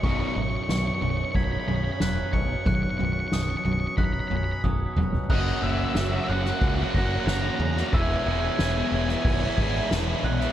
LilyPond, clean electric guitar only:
\new Staff \with { instrumentName = "Clean electric guitar" } { \clef bass \time 4/4 \key b \major \tempo 4 = 91 b,,8 fis,8 b,8 fis,8 fis8 cis'8 fis8 b,8 | b,,8 fis,8 b,8 fis,8 fis8 cis'8 fis8 b,8 | r1 | r1 | }